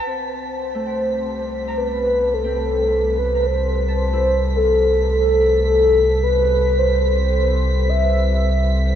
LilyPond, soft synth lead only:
\new Staff \with { instrumentName = "Soft synth lead" } { \time 4/4 \key c \major \tempo 4 = 54 c''4. b'8 a'8. b'16 c''4 | a'4. b'8 c''4 e''8. r16 | }